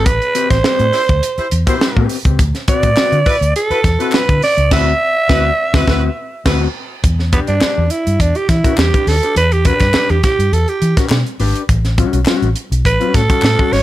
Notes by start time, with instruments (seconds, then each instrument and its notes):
0.06 fingered electric bass A1, alto saxophone B4, kick, closed hi-hat
0.22 closed hi-hat
0.35 clean electric guitar C4 G4 B4, closed hi-hat
0.50 fingered electric bass A1, alto saxophone C5, kick, snare, closed hi-hat
0.64 clean electric guitar C4 G4 B4, snare
0.79 fingered electric bass A2, closed hi-hat
0.93 horn section E4 G4 C5, snare, open hi-hat
1.09 fingered electric bass D2, kick, closed hi-hat
1.23 closed hi-hat
1.38 horn section E4 G4 C5, muted fingered electric bass stroke, closed hi-hat
1.51 fingered electric bass E2, closed hi-hat
1.67 clean electric guitar C4 G4 B4, horn section E4 G4 C5, kick, closed hi-hat
1.81 snare
1.96 fingered electric bass A2, clean electric guitar C4 G4 B4, kick
2.09 open hi-hat
2.25 fingered electric bass C#2, clean electric guitar C4 G4 B4, kick, closed hi-hat
2.39 fingered electric bass D2, kick, closed hi-hat
2.55 snare, closed hi-hat
2.68 clean electric guitar C4 F#4 B4, alto saxophone D5, kick, closed hi-hat
2.83 fingered electric bass A2, kick, closed hi-hat
2.97 clean electric guitar C4 F#4 B4, muted fingered electric bass stroke, snare, clap
3.12 fingered electric bass D3, closed hi-hat
3.26 horn section E4 F#4 B4, kick, open hi-hat
3.41 fingered electric bass D2, closed hi-hat
3.56 alto saxophone A4, closed hi-hat
3.70 horn section E4 F#4 B4, muted fingered electric bass stroke, closed hi-hat
3.84 fingered electric bass E2, kick, snare, closed hi-hat
3.99 clean electric guitar C4 F#4 B4, horn section E4 F#4 B4, closed hi-hat
4.12 alto saxophone B4, snare, clap
4.29 fingered electric bass D3, kick, closed hi-hat
4.42 alto saxophone D5, snare, open hi-hat
4.57 fingered electric bass C#2, closed hi-hat
4.71 fingered electric bass D2, clean electric guitar C4 F#4 B4, horn section E4 F#4 B4, alto saxophone E5, kick, snare, crash
5.29 fingered electric bass D2, clean electric guitar C4 F#4 B4, horn section E4 F#4 B4, kick, snare
5.73 fingered electric bass D2, clean electric guitar C4 F#4 B4, horn section E4 F#4 B4, kick, snare
5.87 fingered electric bass D2, clean electric guitar C4 F#4 B4, horn section E4 F#4 B4, kick, snare
6.46 fingered electric bass D2, clean electric guitar C4 F#4 B4, horn section E4 F#4 B4, kick, snare, crash
7.04 fingered electric bass E2, kick, closed hi-hat
7.19 snare
7.33 alto saxophone B3, clean electric guitar D4 G4 B4, kick, closed hi-hat
7.47 fingered electric bass G2, alto saxophone D4, closed hi-hat
7.61 clean electric guitar D4 G4 B4, muted fingered electric bass stroke, snare, clap
7.78 fingered electric bass E2
7.90 alto saxophone E4, closed hi-hat
8.07 fingered electric bass G2, closed hi-hat
8.20 fingered electric bass E2, alto saxophone D4, kick, closed hi-hat
8.35 alto saxophone G4, closed hi-hat
8.49 fingered electric bass E3, alto saxophone E4, kick, snare, closed hi-hat
8.64 clean electric guitar D4 G4 B4, kick, closed hi-hat
8.78 fingered electric bass E2, alto saxophone G4, snare, clap
8.94 clean electric guitar D4 G4 B4, kick, closed hi-hat
9.07 fingered electric bass D#2, alto saxophone A4, snare, open hi-hat
9.23 clean electric guitar D4 G4 B4, closed hi-hat
9.36 fingered electric bass E2, alto saxophone B4, closed hi-hat
9.52 alto saxophone G4, closed hi-hat
9.65 clean electric guitar D4 G4 B4, alto saxophone B4, kick, closed hi-hat
9.79 fingered electric bass G2, kick, snare, closed hi-hat
9.94 clean electric guitar D4 G4 B4, muted fingered electric bass stroke, snare, clap
10.09 fingered electric bass E2, alto saxophone G4, closed hi-hat
10.23 alto saxophone G4, kick, snare, closed hi-hat
10.39 fingered electric bass G2, closed hi-hat
10.52 fingered electric bass E2, alto saxophone A4, closed hi-hat
10.68 alto saxophone G4, closed hi-hat
10.82 fingered electric bass E3, closed hi-hat
10.97 clean electric guitar D4 G4 B4, kick, snare, closed hi-hat
11.09 fingered electric bass B2, snare, clap
11.26 closed hi-hat
11.40 fingered electric bass G#1, clean electric guitar D4 G4 B4, open hi-hat
11.56 closed hi-hat
11.69 fingered electric bass A1, kick, closed hi-hat
11.85 snare, closed hi-hat
11.98 clean electric guitar G3 C#4 F#4, kick, closed hi-hat
12.13 fingered electric bass B1, closed hi-hat
12.26 clean electric guitar G3 C#4 F#4, snare, clap
12.42 fingered electric bass A1, closed hi-hat
12.56 closed hi-hat
12.71 fingered electric bass B1, closed hi-hat
12.85 fingered electric bass A1, alto saxophone B4, kick, closed hi-hat
13.00 clean electric guitar G3 C#4 F#4, closed hi-hat
13.14 fingered electric bass A2, alto saxophone A4, kick, snare, closed hi-hat
13.29 clean electric guitar G3 C#4 F#4, kick, closed hi-hat
13.42 fingered electric bass A2, snare, clap
13.58 clean electric guitar G3 C#4 F#4, kick
13.72 fingered electric bass G#1, alto saxophone C#5, snare, open hi-hat